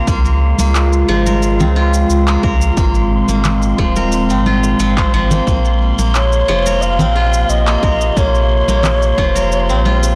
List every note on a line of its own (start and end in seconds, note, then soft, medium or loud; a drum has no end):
0.00 0.13 F3 loud
0.00 1.60 C4 medium
0.00 1.59 F4 medium
0.00 1.26 A#4 loud
0.00 10.15 C6 medium
0.07 0.54 C#2 loud
0.07 2.74 C#3 medium
0.07 2.74 G#3 medium
0.07 0.59 A#3 medium
0.07 2.74 F4 medium
0.07 kick loud
0.07 shaker medium
0.25 shaker soft
0.59 1.04 C#2 medium
0.59 2.27 A#3 medium
0.59 high conga medium
0.59 shaker medium
0.75 clap medium
0.75 shaker medium
0.93 shaker soft
1.08 1.62 G#1 loud
1.08 2.82 F3 loud
1.08 high bongo medium
1.26 2.43 A#4 loud
1.26 high conga medium
1.26 shaker medium
1.43 shaker medium
1.60 2.05 C#2 loud
1.60 4.30 C4 medium
1.60 low conga medium
1.60 shaker soft
1.76 4.28 F4 medium
1.76 high bongo soft
1.94 shaker medium
2.10 2.38 C#2 loud
2.10 shaker medium
2.27 2.77 A#3 medium
2.27 clap medium
2.27 shaker soft
2.43 2.71 C#2 loud
2.43 3.96 A#4 loud
2.43 kick loud
2.43 high bongo medium
2.61 shaker medium
2.77 3.24 G#1 medium
2.77 5.44 A#2 medium
2.77 5.44 G#3 medium
2.77 3.28 A#3 medium
2.77 5.44 C4 medium
2.77 kick loud
2.77 shaker medium
2.95 shaker soft
3.28 3.74 G#1 medium
3.28 5.31 A#3 medium
3.28 high conga medium
3.28 shaker medium
3.45 clap medium
3.45 low conga medium
3.45 shaker medium
3.62 shaker soft
3.78 4.31 D#1 loud
3.78 4.78 F3 loud
3.78 kick medium
3.78 high bongo medium
3.96 6.08 A#4 loud
3.96 high conga medium
3.96 shaker medium
4.12 shaker medium
4.30 4.75 G#1 loud
4.30 4.97 C4 medium
4.30 shaker soft
4.46 6.98 F4 medium
4.46 high conga medium
4.64 high bongo soft
4.64 shaker medium
4.79 5.07 G#1 loud
4.79 5.12 F3 loud
4.79 shaker medium
4.97 6.99 C4 medium
4.97 kick loud
4.97 clap medium
4.97 high conga medium
4.97 shaker soft
5.13 5.41 G#1 loud
5.13 5.52 F3 loud
5.31 5.47 A#3 medium
5.31 low conga loud
5.31 shaker medium
5.47 5.93 A#1 loud
5.47 10.15 C3 medium
5.47 5.98 A#3 medium
5.47 10.15 A#3 medium
5.47 kick loud
5.47 shaker medium
5.65 shaker soft
5.99 6.43 A#1 medium
5.99 7.67 A#3 medium
5.99 high conga medium
5.99 shaker medium
6.15 6.84 C#5 loud
6.15 clap medium
6.15 shaker medium
6.33 shaker soft
6.48 7.01 F1 loud
6.48 9.17 F3 loud
6.48 high bongo medium
6.66 7.83 A#4 loud
6.66 high conga medium
6.66 shaker medium
6.82 7.51 F5 loud
6.82 shaker medium
6.99 7.45 A#1 loud
6.99 9.69 C4 medium
6.99 low conga loud
6.99 shaker soft
7.15 9.68 F4 medium
7.15 high bongo soft
7.34 shaker medium
7.49 7.77 A#1 loud
7.49 8.19 D#5 loud
7.49 shaker medium
7.67 8.16 A#3 medium
7.67 clap medium
7.67 shaker soft
7.83 8.11 A#1 loud
7.83 9.35 A#4 loud
7.83 kick medium
7.83 high bongo medium
8.01 shaker medium
8.17 8.63 A#1 loud
8.17 8.68 A#3 medium
8.17 10.15 C#5 loud
8.17 kick loud
8.17 shaker medium
8.35 shaker soft
8.68 9.13 A#1 medium
8.68 10.15 A#3 medium
8.68 high conga medium
8.68 shaker medium
8.83 clap medium
8.83 low conga medium
8.83 shaker medium
9.02 shaker soft
9.18 9.71 F1 loud
9.18 10.15 F3 loud
9.18 kick medium
9.18 high bongo soft
9.35 10.15 A#4 loud
9.35 high conga medium
9.35 shaker medium
9.52 shaker medium
9.69 10.14 A#1 loud
9.69 10.15 C4 medium
9.69 shaker soft
9.85 10.15 F4 medium
9.85 high conga medium
10.03 high bongo soft
10.03 shaker medium